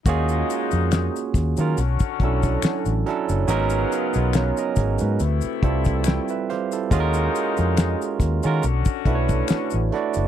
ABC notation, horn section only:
X:1
M:4/4
L:1/8
Q:"Swing 16ths" 1/4=70
K:Cblyd
V:1 name="Horn section"
[B,,A,E]3 z [=D,^C^F]3 z | [D,CF]3 z [=C,=A,=E]3 z | [B,,A,E]3 z [=D,^C^F]3 z |]